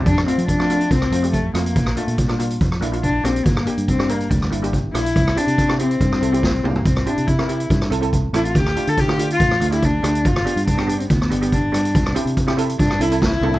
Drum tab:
HH |x-xxx-xxx-xxx-xx|x-xxx-xxx-xxx-xx|x-xxx-xxx-xxx-xx|x-xxx-xxx-xx----|
SD |-r---r---r----r-|-r---r---r----r-|-r---r---r----r-|-r---r---r--o---|
T2 |----------------|----------------|----------------|--------------o-|
FT |----------------|----------------|----------------|---------------o|
BD |o---o---o---o---|o---o---o---o---|o---o---o---o---|o---o---o---o---|

HH |x-xxx-xxx-xxx-xx|x-xxx-xxx-xxx-xx|x-xxx-xxx-xxx-xx|x-xxx-xxx-xx----|
SD |-r---r---r----r-|-r---r---r----r-|-r---r---r----r-|-r---r---r--o---|
T2 |----------------|----------------|----------------|--------------o-|
FT |----------------|----------------|----------------|---------------o|
BD |o---o---o---o---|o---o---o---o---|o---o---o---o---|o---o---o---o---|